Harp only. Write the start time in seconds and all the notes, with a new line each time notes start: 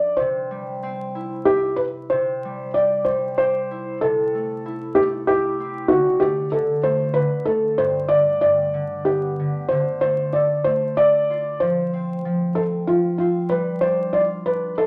Already playing: G3 D4 B4
0.20 C3
0.51 G3
0.83 C4
1.15 E4
1.48 E5
2.12 C3
2.45 G3
2.76 G4
3.08 G3
3.40 G4
3.71 E4
4.02 C3
4.35 A3
4.66 E4
4.97 A3
5.29 E4
5.60 C4
5.92 D3
6.22 A3
6.53 D3
6.84 A3
7.15 D3
7.47 A3
7.78 G2
8.10 D3
8.42 G2
8.74 D3
9.07 B3
9.39 D3
9.71 D3
10.03 A3
10.35 A4
10.66 A3
10.99 A4
11.30 F4
11.62 F3
11.93 C4
12.25 F3
12.57 C4
12.88 F3
13.20 C4
13.52 G3
13.83 D4
14.14 F4
14.46 D4
14.77 F4